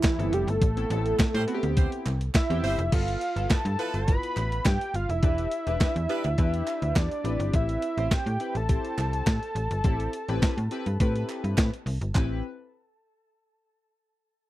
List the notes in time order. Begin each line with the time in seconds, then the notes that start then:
0.03 E4, kick, snare, clap, closed hi-hat
0.19 G1 B3 C4 E4 A4, closed hi-hat
0.32 F1 G4, closed hi-hat
0.47 G1 A4, closed hi-hat
0.62 A1, kick, closed hi-hat
0.77 B3 C4 E4 A4, closed hi-hat
0.90 A1 B3 C4 E4 A4, closed hi-hat
1.06 closed hi-hat
1.19 A2, kick, snare, clap, closed hi-hat
1.34 A2 G3 E4 C5, closed hi-hat
1.47 B3 C4 E4 F#4, closed hi-hat
1.54 G4
1.63 D2, closed hi-hat
1.77 G3 E4 C5, kick, closed hi-hat
1.92 closed hi-hat
2.06 C2, clap, closed hi-hat
2.21 closed hi-hat
2.35 E5, kick, snare, clap, closed hi-hat
2.50 E2 B3 C4 E4 G4, closed hi-hat
2.63 G1 G3 E4 C5, open hi-hat
2.78 F1, closed hi-hat
2.91 G1 B3 E4 F4 A4 F5, kick, closed hi-hat, crash
3.08 closed hi-hat
3.21 closed hi-hat
3.36 G1 B3 E4 F4 A4, closed hi-hat
3.50 G2 F3 E4 B4 A5, kick, snare, clap, closed hi-hat
3.65 G2, closed hi-hat
3.78 F3 B3 E4 F4 A4 B4, closed hi-hat
3.94 G1, closed hi-hat
4.07 B3 E4 F4 B4 B5, kick, closed hi-hat
4.23 closed hi-hat
4.37 A1, clap, closed hi-hat
4.52 closed hi-hat
4.65 G2 G5, kick, snare, clap, closed hi-hat
4.81 closed hi-hat
4.94 G1 F5, closed hi-hat
5.09 F1 E5, closed hi-hat
5.23 E1 D4 E4 G4 B4, kick, closed hi-hat
5.38 closed hi-hat
5.51 closed hi-hat
5.66 E1 D4 E4 G4 B4, closed hi-hat
5.80 E2 G3 E4 B4, kick, snare, clap, closed hi-hat
5.96 E2, closed hi-hat
6.09 G3 D4 E4 G4 B4 D5, closed hi-hat
6.24 D2, closed hi-hat
6.38 E2 D4 E4 G4 B4, kick, closed hi-hat
6.54 closed hi-hat
6.67 clap, closed hi-hat
6.82 D2, closed hi-hat
6.96 E2 D5, kick, snare, clap, closed hi-hat
7.11 closed hi-hat
7.24 A1 C4 E4 G4 B4, closed hi-hat
7.40 G1, closed hi-hat
7.54 A1 E5, kick, closed hi-hat
7.69 closed hi-hat
7.82 closed hi-hat
7.97 A1 C4 E4 G4 C5, closed hi-hat
8.11 G5, kick, snare, clap, closed hi-hat
8.26 A2, closed hi-hat
8.40 C4 E4 G4 B4, closed hi-hat
8.55 A1 A5, closed hi-hat
8.69 C4 E4 G4 C5, kick, closed hi-hat
8.85 closed hi-hat
8.98 C2, clap, closed hi-hat
9.13 closed hi-hat
9.27 A2, kick, snare, clap, closed hi-hat
9.43 closed hi-hat
9.55 A1, closed hi-hat
9.71 G1, closed hi-hat
9.84 A1 C4 E4 G4 A4, kick, closed hi-hat
10.00 closed hi-hat
10.13 closed hi-hat
10.29 A1 C4 E4 G4 B4, closed hi-hat
10.42 A2, kick, snare, clap, closed hi-hat
10.58 A2, closed hi-hat
10.71 C4 E4 G4 B4, closed hi-hat
10.86 G2, closed hi-hat
11.00 A2 C4 E4 G4 B4, kick, closed hi-hat
11.16 closed hi-hat
11.29 clap, closed hi-hat
11.44 G2, closed hi-hat
11.57 A2, kick, snare, clap, closed hi-hat
11.74 closed hi-hat
11.86 C2, open hi-hat
12.01 G1, closed hi-hat
12.15 A1 C4 E4 G4 B4, kick, clap